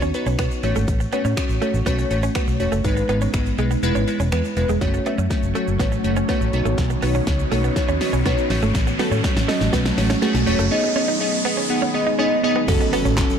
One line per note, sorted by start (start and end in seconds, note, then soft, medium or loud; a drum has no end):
0.02 0.10 D#2 medium
0.02 0.11 C#4 medium
0.02 shaker soft
0.02 shaker medium
0.14 0.32 B3 medium
0.14 0.32 D#4 medium
0.14 0.32 F#4 medium
0.14 0.32 B4 loud
0.14 muted clean electric guitar stroke soft
0.14 closed hi-hat medium
0.14 shaker soft
0.14 shaker medium
0.26 0.34 B1 medium
0.26 0.36 C#4 medium
0.26 shaker medium
0.38 0.47 B2 loud
0.38 0.56 B3 medium
0.38 0.48 B3 medium
0.38 0.56 D#4 medium
0.38 0.56 F#4 medium
0.38 0.56 C#5 medium
0.38 finger snap loud
0.38 kick loud
0.38 closed hi-hat medium
0.38 shaker medium
0.51 shaker soft
0.51 shaker medium
0.63 0.72 A1 loud
0.63 1.03 A3 medium
0.63 1.03 C#4 medium
0.63 1.03 F#4 medium
0.63 1.03 C#5 loud
0.63 muted clean electric guitar stroke soft
0.63 closed hi-hat soft
0.63 shaker soft
0.63 shaker medium
0.75 0.84 G#1 loud
0.75 0.85 A3 medium
0.75 shaker medium
0.88 1.04 A1 loud
0.88 kick loud
0.88 closed hi-hat medium
0.88 shaker medium
1.00 muted clean electric guitar stroke soft
1.00 shaker soft
1.00 shaker medium
1.12 1.30 A3 medium
1.12 1.22 B3 medium
1.12 1.30 C#4 medium
1.12 1.30 F#4 medium
1.12 1.30 C#5 medium
1.12 closed hi-hat medium
1.12 shaker medium
1.25 1.33 A2 medium
1.25 1.34 C#4 medium
1.25 shaker soft
1.25 shaker medium
1.37 1.54 A3 medium
1.37 1.54 C#4 medium
1.37 1.54 F#4 medium
1.37 1.55 C#5 loud
1.37 finger snap loud
1.37 kick loud
1.37 closed hi-hat medium
1.37 shaker medium
1.49 1.57 A1 medium
1.49 shaker medium
1.61 1.79 A3 medium
1.61 1.71 A3 medium
1.61 1.79 C#4 medium
1.61 1.79 F#4 medium
1.61 1.79 C#5 medium
1.61 closed hi-hat soft
1.61 shaker soft
1.74 1.82 A1 medium
1.74 shaker soft
1.74 shaker medium
1.86 2.02 B1 loud
1.86 2.03 A3 loud
1.86 1.96 B3 medium
1.86 2.04 C#4 loud
1.86 2.04 F#4 loud
1.86 2.04 C#5 loud
1.86 kick loud
1.86 closed hi-hat medium
1.86 shaker medium
1.98 muted clean electric guitar stroke soft
1.98 shaker medium
1.98 shaker soft
2.10 2.27 A1 medium
2.10 2.28 A3 medium
2.10 2.28 C#4 medium
2.10 2.28 F#4 medium
2.10 2.28 C#5 medium
2.10 closed hi-hat medium
2.10 shaker medium
2.23 2.33 C#4 medium
2.23 shaker medium
2.35 2.53 A3 medium
2.35 2.45 B3 medium
2.35 2.53 C#4 medium
2.35 2.53 F#4 medium
2.35 2.53 C#5 medium
2.35 finger snap loud
2.35 kick loud
2.35 closed hi-hat medium
2.35 shaker medium
2.48 2.56 B1 medium
2.48 muted clean electric guitar stroke soft
2.48 shaker medium
2.59 2.68 E1 medium
2.59 2.77 A3 medium
2.59 2.77 C#4 medium
2.59 2.77 F#4 medium
2.59 2.78 C#5 medium
2.59 closed hi-hat soft
2.59 shaker soft
2.59 shaker medium
2.72 2.80 F#1 medium
2.72 2.82 A3 medium
2.72 shaker medium
2.84 3.01 G#1 loud
2.84 3.02 G#3 loud
2.84 3.02 B3 medium
2.84 3.02 D#4 medium
2.84 3.02 B4 loud
2.84 kick loud
2.84 closed hi-hat medium
2.84 shaker medium
2.97 muted clean electric guitar stroke soft
2.97 shaker medium
2.97 shaker soft
3.09 3.25 G#1 medium
3.09 3.26 G#3 medium
3.09 3.26 B3 medium
3.09 3.19 B3 medium
3.09 3.27 D#4 medium
3.09 3.27 B4 medium
3.09 closed hi-hat soft
3.09 shaker soft
3.21 3.31 C#4 medium
3.21 shaker medium
3.34 3.50 G#1 medium
3.34 3.51 G#3 medium
3.34 3.51 B3 medium
3.34 3.51 D#4 medium
3.34 3.51 B4 medium
3.34 finger snap loud
3.34 muted clean electric guitar stroke soft
3.34 kick loud
3.34 closed hi-hat medium
3.34 shaker medium
3.46 shaker medium
3.58 3.74 B1 loud
3.58 3.76 G#3 medium
3.58 3.68 G#3 medium
3.58 3.76 B3 medium
3.58 3.76 D#4 medium
3.58 3.76 B4 medium
3.58 closed hi-hat soft
3.58 shaker soft
3.70 3.80 B3 medium
3.70 shaker soft
3.70 shaker medium
3.83 3.91 E1 loud
3.83 4.00 G#3 loud
3.83 4.00 B3 loud
3.83 4.00 E4 loud
3.83 4.01 B4 loud
3.83 closed hi-hat medium
3.83 shaker medium
3.95 4.03 G#1 medium
3.95 4.05 C#4 medium
3.95 shaker soft
3.95 shaker medium
4.07 4.25 G#3 medium
4.07 4.25 B3 medium
4.07 4.25 E4 medium
4.07 4.25 B4 medium
4.07 muted clean electric guitar stroke soft
4.07 closed hi-hat medium
4.07 shaker medium
4.20 4.28 E1 loud
4.20 4.29 C#4 medium
4.20 shaker medium
4.32 4.40 E2 loud
4.32 4.49 G#3 medium
4.32 4.50 B3 medium
4.32 4.42 B3 medium
4.32 4.50 E4 medium
4.32 4.50 B4 medium
4.32 finger snap loud
4.32 closed hi-hat medium
4.32 shaker medium
4.45 shaker medium
4.57 4.65 E1 medium
4.57 4.74 G#3 medium
4.57 4.74 B3 medium
4.57 4.74 E4 medium
4.57 4.74 B4 medium
4.57 muted clean electric guitar stroke soft
4.57 closed hi-hat soft
4.57 shaker soft
4.57 shaker medium
4.69 4.77 E1 medium
4.69 4.79 G#3 medium
4.69 shaker medium
4.81 4.98 F#1 loud
4.81 6.52 F#3 medium
4.81 4.99 A3 loud
4.81 6.52 A3 medium
4.81 6.52 C#4 medium
4.81 4.99 C#4 medium
4.81 4.99 F#4 medium
4.81 4.99 C#5 loud
4.81 kick loud
4.81 snare medium
4.81 closed hi-hat medium
4.81 riser medium
4.81 shaker medium
4.94 muted clean electric guitar stroke soft
4.94 shaker medium
5.06 5.23 A3 medium
5.06 5.16 B3 medium
5.06 5.23 C#4 medium
5.06 5.23 F#4 medium
5.06 5.23 E5 medium
5.06 closed hi-hat soft
5.06 shaker soft
5.18 5.26 F#2 medium
5.18 5.28 C#4 medium
5.18 shaker medium
5.30 5.48 A3 medium
5.30 5.48 C#4 medium
5.30 5.48 F#4 medium
5.30 5.48 C#5 medium
5.30 kick loud
5.30 snare medium
5.30 closed hi-hat medium
5.30 shaker medium
5.43 5.51 F#1 medium
5.43 shaker medium
5.55 5.72 A3 medium
5.55 5.65 A3 medium
5.55 5.72 C#4 medium
5.55 5.72 F#4 medium
5.55 5.73 C#5 medium
5.55 closed hi-hat soft
5.55 shaker soft
5.68 5.76 F#1 medium
5.68 shaker medium
5.79 5.96 A1 medium
5.79 5.97 A3 medium
5.79 5.89 B3 medium
5.79 5.97 C#4 medium
5.79 5.97 F#4 medium
5.79 5.97 C#5 medium
5.79 kick loud
5.79 snare medium
5.79 closed hi-hat medium
5.79 shaker medium
5.92 muted clean electric guitar stroke soft
5.92 shaker medium
6.04 6.21 F#1 medium
6.04 6.22 A3 medium
6.04 6.22 C#4 medium
6.04 6.22 F#4 medium
6.04 6.22 C#5 medium
6.04 closed hi-hat medium
6.04 shaker medium
6.16 6.26 C#4 medium
6.16 shaker medium
6.29 6.46 A3 loud
6.29 6.38 B3 medium
6.29 6.46 C#4 loud
6.29 6.46 F#4 loud
6.29 6.46 C#5 loud
6.29 kick loud
6.29 snare medium
6.29 closed hi-hat medium
6.29 shaker medium
6.41 6.49 A1 medium
6.41 muted clean electric guitar stroke soft
6.41 shaker medium
6.53 6.61 B1 loud
6.53 8.48 D#3 medium
6.53 8.48 B3 medium
6.53 6.93 B3 medium
6.53 10.67 C#4 medium
6.53 6.93 D#4 medium
6.53 6.93 F#4 medium
6.53 6.93 C#5 loud
6.53 closed hi-hat soft
6.53 shaker soft
6.65 6.74 A1 medium
6.65 6.75 A3 medium
6.65 shaker medium
6.78 6.94 B1 loud
6.78 kick loud
6.78 snare medium
6.78 closed hi-hat medium
6.78 shaker medium
6.90 muted clean electric guitar stroke soft
6.90 shaker medium
7.02 7.19 B1 loud
7.02 7.12 B3 medium
7.02 7.20 B3 medium
7.02 7.20 D#4 medium
7.02 7.20 F#4 medium
7.02 7.20 C#5 medium
7.02 open hi-hat medium
7.02 shaker soft
7.15 7.24 C#4 medium
7.15 shaker medium
7.27 7.43 C#2 medium
7.27 7.45 B3 medium
7.27 7.45 D#4 medium
7.27 7.45 F#4 medium
7.27 7.45 C#5 medium
7.27 muted clean electric guitar stroke soft
7.27 kick loud
7.27 snare medium
7.27 closed hi-hat medium
7.27 shaker medium
7.39 shaker medium
7.52 7.68 B1 medium
7.52 7.61 A3 medium
7.52 7.69 B3 medium
7.52 7.69 D#4 medium
7.52 7.69 F#4 medium
7.52 7.69 C#5 medium
7.52 open hi-hat medium
7.52 shaker soft
7.64 7.74 B3 medium
7.64 shaker medium
7.76 7.94 B3 medium
7.76 7.94 D#4 medium
7.76 7.94 F#4 medium
7.76 7.94 C#5 loud
7.76 kick loud
7.76 snare medium
7.76 closed hi-hat medium
7.76 shaker medium
7.89 7.97 D#2 medium
7.89 7.98 C#4 medium
7.89 shaker medium
8.01 8.18 B3 medium
8.01 8.18 D#4 medium
8.01 8.19 F#4 medium
8.01 8.19 C#5 loud
8.01 muted clean electric guitar stroke soft
8.01 snare medium
8.01 open hi-hat medium
8.01 shaker medium
8.13 8.21 B1 medium
8.13 8.23 C#4 medium
8.13 shaker medium
8.25 8.34 B2 loud
8.25 8.43 B3 loud
8.25 8.35 B3 medium
8.25 8.43 D#4 loud
8.25 8.43 F#4 loud
8.25 8.43 C#5 loud
8.25 kick loud
8.25 snare medium
8.25 closed hi-hat medium
8.25 shaker medium
8.38 shaker medium
8.50 8.58 A1 loud
8.50 10.69 F#3 medium
8.50 8.90 A3 medium
8.50 10.69 A3 medium
8.50 8.90 C#4 medium
8.50 8.90 F#4 medium
8.50 8.90 C#5 loud
8.50 muted clean electric guitar stroke soft
8.50 snare medium
8.50 open hi-hat medium
8.50 shaker soft
8.62 8.71 G#1 medium
8.62 8.72 A3 medium
8.62 shaker medium
8.75 8.91 A1 loud
8.75 kick loud
8.75 snare medium
8.75 closed hi-hat medium
8.75 shaker medium
8.87 muted clean electric guitar stroke soft
8.87 shaker soft
8.87 shaker medium
8.99 9.17 A3 medium
8.99 9.09 B3 medium
8.99 9.17 C#4 medium
8.99 9.17 F#4 medium
8.99 9.17 A4 loud
8.99 snare medium
8.99 open hi-hat medium
8.99 shaker soft
9.11 9.20 A2 medium
9.11 9.21 C#4 medium
9.11 shaker soft
9.11 shaker medium
9.24 9.41 A3 medium
9.24 9.41 C#4 medium
9.24 9.41 F#4 medium
9.24 9.42 C#5 loud
9.24 kick loud
9.24 snare loud
9.24 closed hi-hat medium
9.24 shaker medium
9.36 9.44 A1 medium
9.36 snare loud
9.36 shaker medium
9.48 9.66 A3 medium
9.48 9.58 A3 medium
9.48 9.66 C#4 medium
9.48 9.66 F#4 medium
9.48 9.66 D#5 loud
9.48 snare loud
9.48 open hi-hat medium
9.48 shaker medium
9.61 9.69 A1 medium
9.61 snare loud
9.61 shaker soft
9.61 shaker medium
9.73 9.89 B1 loud
9.73 9.90 A3 medium
9.73 9.82 B3 medium
9.73 9.90 C#4 medium
9.73 9.90 F#4 medium
9.73 9.91 B4 loud
9.73 kick loud
9.73 snare loud
9.73 closed hi-hat medium
9.73 shaker medium
9.85 muted clean electric guitar stroke soft
9.85 snare loud
9.85 shaker medium
9.97 10.14 A1 medium
9.97 10.15 A3 medium
9.97 10.15 C#4 medium
9.97 10.15 F#4 medium
9.97 10.15 C#5 medium
9.97 snare loud
9.97 open hi-hat medium
9.97 shaker medium
10.10 10.19 C#4 medium
10.10 snare loud
10.10 shaker medium
10.22 10.40 A3 loud
10.22 10.32 B3 medium
10.22 10.40 C#4 loud
10.22 10.40 F#4 loud
10.22 10.40 G#4 loud
10.22 snare loud
10.22 closed hi-hat medium
10.22 shaker medium
10.34 10.43 B1 medium
10.34 muted clean electric guitar stroke soft
10.34 snare loud
10.34 shaker medium
10.46 10.55 E1 medium
10.46 10.64 A3 loud
10.46 10.64 C#4 loud
10.46 10.64 F#4 loud
10.46 10.64 C#5 loud
10.46 open hi-hat medium
10.46 shaker soft
10.59 10.67 F#1 medium
10.59 10.68 A3 medium
10.59 shaker medium
10.71 12.66 D#3 medium
10.71 12.66 G#3 medium
10.71 10.89 B3 loud
10.71 12.66 B3 medium
10.71 10.89 D#4 loud
10.71 10.89 G#4 loud
10.71 10.89 D#5 loud
10.84 muted clean electric guitar stroke medium
10.96 11.13 B3 medium
10.96 11.05 C#4 medium
10.96 11.13 D#4 medium
10.96 11.13 G#4 medium
10.96 11.14 D#5 loud
11.08 11.18 D#4 medium
11.20 11.38 B3 medium
11.20 11.38 D#4 medium
11.20 11.38 G#4 medium
11.20 11.38 D#5 loud
11.20 muted clean electric guitar stroke soft
11.45 11.62 B3 medium
11.45 11.55 B3 medium
11.45 11.62 D#4 medium
11.45 11.63 G#4 medium
11.45 11.63 D#5 loud
11.57 11.67 C#4 medium
11.70 11.87 B3 medium
11.70 11.87 D#4 medium
11.70 11.87 G#4 medium
11.70 11.87 F#5 loud
11.82 11.91 C#4 medium
11.94 12.12 B3 medium
11.94 12.12 D#4 medium
11.94 12.12 G#4 medium
11.94 12.12 D#5 loud
11.94 muted clean electric guitar stroke soft
12.07 12.16 D#4 medium
12.19 12.36 B3 loud
12.19 12.28 C#4 medium
12.19 12.36 D#4 loud
12.19 12.37 G#4 loud
12.19 12.37 D#5 loud
12.43 12.61 B3 loud
12.43 12.61 D#4 loud
12.43 12.61 G#4 loud
12.43 12.61 D#5 loud
12.43 muted clean electric guitar stroke soft
12.56 12.65 B3 medium
12.68 12.76 F#1 loud
12.68 13.39 F#3 medium
12.68 13.39 A3 medium
12.68 12.85 C#4 loud
12.68 13.39 C#4 medium
12.68 12.86 F#4 loud
12.68 12.86 A4 loud
12.68 kick loud
12.68 closed hi-hat medium
12.68 crash loud
12.68 impact medium
12.68 shaker medium
12.80 muted clean electric guitar stroke medium
12.80 shaker soft
12.80 shaker medium
12.93 13.02 B3 medium
12.93 13.10 C#4 medium
12.93 13.10 F#4 medium
12.93 13.10 A4 loud
12.93 open hi-hat medium
12.93 shaker medium
12.93 shaker soft
13.05 13.21 A1 loud
13.05 13.15 C#4 medium
13.05 shaker medium
13.17 13.35 C#4 medium
13.17 13.35 F#4 medium
13.17 13.35 A4 loud
13.17 kick loud
13.17 snare medium
13.17 clap loud
13.17 closed hi-hat medium
13.17 shaker medium
13.30 shaker medium